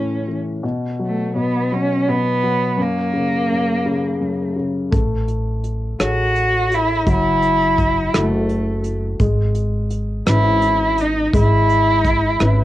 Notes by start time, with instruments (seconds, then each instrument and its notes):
Already playing: grand piano A2 E3, cello C#4
0.28 grand piano E3
0.63 grand piano B2
0.99 grand piano F#3
1.05 cello A3
1.35 grand piano B2, cello B3
1.72 grand piano F#3, cello C#4
2.08 grand piano B2, cello B3
2.43 grand piano F#3
2.77 grand piano F#2
2.81 cello A#3
3.13 grand piano C#3
3.51 grand piano F#2
3.86 grand piano C#3
4.21 grand piano F#2
4.56 grand piano C#3
4.91 upright bass A1, grand piano A3, kick, closed hi-hat
5.28 closed hi-hat
5.64 closed hi-hat
6.00 upright bass A1, cello F#4, grand piano G#4 A4 C#5, cross-stick, closed hi-hat
6.35 closed hi-hat
6.71 cello E4, closed hi-hat
7.06 upright bass F#1, grand piano F#3, kick, closed hi-hat
7.11 cello E4
7.42 closed hi-hat
7.78 kick, closed hi-hat
8.13 upright bass F#1, grand piano E4 F#4 A4, cross-stick, closed hi-hat
8.18 cello A3
8.49 closed hi-hat
8.84 closed hi-hat
9.19 upright bass G#1, grand piano G#3, kick, closed hi-hat
9.55 closed hi-hat
9.90 closed hi-hat
10.26 upright bass G#1, grand piano E3 C#4 B4, cello E4, cross-stick, closed hi-hat
10.62 closed hi-hat
10.98 cello D#4, closed hi-hat
11.34 upright bass G#1, grand piano G#3, cello E4, kick, closed hi-hat
11.69 closed hi-hat
12.04 kick, closed hi-hat
12.40 upright bass G#1, grand piano C#4 E4 B4, cross-stick, closed hi-hat